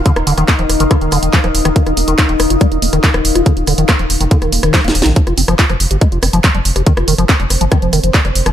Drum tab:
HH |x--x--o--x--x--x--o--x--x--x--o--x--x--x--o--x--|x--x--o--x--x--x--o--x--x--x--o--x--x--x--o--x--|x--x--o--x--x--x--o--x--x--x--o--x--x--x--o--x--|x--x--o--x--x--x--o--x--x--x--o--x--x--x--o--x--|
CP |------------x-----------------------x-----------|------------x-----------------------x-----------|------------x-----------------------x-----------|------------x-----------------------x-----------|
SD |---r-----r--------r-----r-----r--------r-----r--|---r--------r-----r-----r--------r-----r-----r--|------r-----r--------------r-----r--o---o---o---|---r-----r-----r--------r-----r-----r--------r--|
BD |o-----------o-----------o-----------o-----------|o-----------o-----------o-----------o-----------|o-----------o-----------o-----------o-----------|o-----------o-----------o-----------o-----------|

HH |x--x--o--x--x--x--o--x--x--x--o--x--x--x--o--x--|
CP |------------x-----------------------x-----------|
SD |---r-----r--------r-----r-----r--------r-----r--|
BD |o-----------o-----------o-----------o-----------|